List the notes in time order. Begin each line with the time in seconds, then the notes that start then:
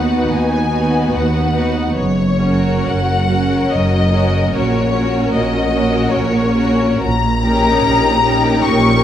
Already playing: D#2 B3 D#4 F#4 B4 F#5
0.29 D#2 G#5
0.71 B3 D#4 F#4 B4
1.12 D#2 F#5
1.53 B3 D#4 F#4 B4
1.94 F#1 F#2 C#5
2.39 C#4 F#4 A#4
2.86 F#1 F#2 F#5
3.29 C#4 F#4 A#4
3.70 F#1 F#2 D#5
4.11 C#4 F#4 A#4
4.52 A#1 A#2 C#4 F#4 A#4 C#5
4.92 C#4 F#4 A#4
5.32 A#1 A#2 D#5
5.71 C#4 F#4 A#4
6.12 A#1 A#2 C#5
6.56 C#4 F#4 A#4
7.00 A#1 A#2 A#5
7.43 C#4 D#4 G4 A#4
7.83 A#1 A#2
8.23 C#4 D#4 G4 A#4
8.65 A#1 A#2 C#6